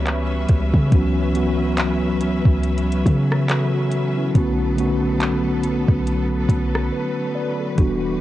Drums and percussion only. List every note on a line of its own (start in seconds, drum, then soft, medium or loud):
0.06 clap loud
0.06 closed hi-hat medium
0.49 kick loud
0.49 closed hi-hat medium
0.74 kick loud
0.92 kick loud
0.92 closed hi-hat medium
1.35 closed hi-hat medium
1.77 clap loud
1.77 closed hi-hat medium
2.21 closed hi-hat medium
2.45 kick loud
2.63 closed hi-hat medium
2.78 closed hi-hat medium
2.92 closed hi-hat medium
3.06 kick loud
3.06 closed hi-hat medium
3.32 cross-stick loud
3.49 clap loud
3.49 closed hi-hat medium
3.92 closed hi-hat medium
4.35 kick loud
4.35 closed hi-hat medium
4.78 closed hi-hat medium
5.20 clap loud
5.20 closed hi-hat medium
5.63 closed hi-hat medium
5.88 kick loud
6.07 closed hi-hat medium
6.49 kick medium
6.49 closed hi-hat medium
6.75 cross-stick loud
7.78 kick loud
7.78 closed hi-hat medium